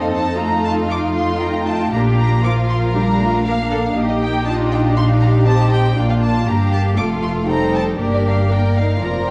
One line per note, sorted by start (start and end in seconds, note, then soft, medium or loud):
0.00 1.94 F2 medium
0.00 0.40 C4 soft
0.00 1.89 D#4 medium
0.00 0.38 A4 medium
0.00 0.91 A4 medium
0.00 0.39 D#5 medium
0.00 0.07 F5 medium
0.14 0.39 A5 medium
0.39 0.90 A3 soft
0.39 1.93 F4 medium
0.39 1.42 F5 medium
0.39 0.65 A#5 medium
0.65 0.73 A5 medium
0.90 1.92 A3 medium
0.90 1.91 F4 medium
0.90 0.98 D6 medium
1.15 1.41 C6 medium
1.40 1.93 G5 medium
1.40 1.67 A#5 medium
1.66 1.92 A5 medium
1.92 3.92 A#1 medium
1.92 2.45 A#3 medium
1.92 2.44 D4 soft
1.92 2.44 F4 medium
1.92 2.44 G4 medium
1.92 3.95 F5 medium
1.92 2.00 A#5 medium
2.19 2.44 A#5 medium
2.44 2.95 F3 medium
2.44 2.94 F4 medium
2.44 2.96 F4 medium
2.44 3.96 A#4 medium
2.44 2.52 D6 medium
2.70 2.78 C6 medium
2.95 3.20 G3 medium
2.95 3.46 D4 medium
2.95 3.03 G4 medium
2.95 3.44 A#5 medium
3.20 3.46 A3 medium
3.20 3.45 F4 medium
3.43 3.95 A#3 medium
3.43 3.95 D4 medium
3.43 3.53 A#4 medium
3.43 3.93 F5 medium
3.71 3.79 A4 medium
3.95 5.94 A#1 medium
3.95 4.45 A#3 medium
3.95 4.96 D#4 medium
3.95 4.94 G4 medium
3.95 4.45 G4 medium
3.95 4.94 D#5 medium
4.08 4.13 D#5 medium
4.19 4.44 G5 medium
4.45 5.47 D4 medium
4.45 4.96 F4 medium
4.45 4.53 A5 medium
4.71 4.79 G5 medium
4.96 5.98 D#4 medium
4.96 5.46 D#4 medium
4.96 5.97 G4 medium
4.96 5.47 F5 medium
4.96 5.04 C6 medium
5.20 5.28 A#5 medium
5.45 5.98 C4 medium
5.45 5.96 G4 medium
5.45 5.98 D#5 medium
5.45 5.71 A5 medium
5.72 5.97 G5 medium
5.96 6.47 A#1 medium
5.96 6.47 A#3 soft
5.96 6.46 D4 medium
5.96 6.46 F4 medium
5.96 6.47 F4 medium
5.96 6.46 D5 soft
6.09 6.14 F5 medium
6.22 6.47 A5 medium
6.45 6.98 G1 soft
6.45 6.97 A#3 soft
6.45 6.97 D4 soft
6.45 6.97 G4 medium
6.45 6.98 G4 medium
6.45 6.95 F5 medium
6.45 6.72 A#5 medium
6.72 6.80 A5 medium
6.96 7.99 F1 medium
6.96 7.48 A3 medium
6.96 7.47 F4 medium
6.96 7.48 F4 soft
6.96 7.47 A4 soft
6.96 7.46 F5 medium
6.96 7.04 D6 medium
7.22 7.30 C6 medium
7.47 7.99 G3 medium
7.47 7.98 D#4 medium
7.47 7.99 A4 medium
7.47 7.98 C5 soft
7.47 7.99 G5 medium
7.47 7.73 A#5 medium
7.74 7.82 A5 medium
7.97 8.98 G1 medium
7.97 8.47 A#3 soft
7.97 8.47 D4 medium
7.97 8.49 G4 medium
7.97 8.46 A#4 medium
7.97 8.46 D5 soft
8.13 8.18 D5 medium
8.26 8.50 F5 medium
8.49 9.01 A#3 soft
8.49 8.58 D4 soft
8.49 8.99 A#4 soft
8.49 9.01 A#4 medium
8.49 8.99 D5 soft
8.49 8.77 G5 medium
8.76 9.01 D#4 soft
8.76 9.02 F5 medium
9.00 9.30 F1 soft
9.00 9.30 F3 soft
9.00 9.30 F4 soft
9.00 9.30 A#4 soft
9.00 9.30 A#4 medium
9.00 9.30 D5 soft
9.00 9.28 A#5 medium